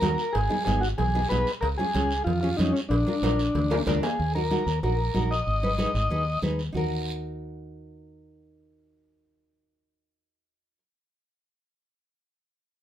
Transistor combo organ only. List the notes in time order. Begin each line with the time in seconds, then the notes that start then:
Already playing: A#4
0.33 G#4
0.65 G#4
0.81 F#4
0.98 G#4
1.29 B4
1.61 A#4
1.78 G#4
2.24 F4
2.41 F4
2.57 D#4
2.73 C#4
2.89 D4
4.03 G#4
4.35 A#4
4.83 A#4
5.31 D#5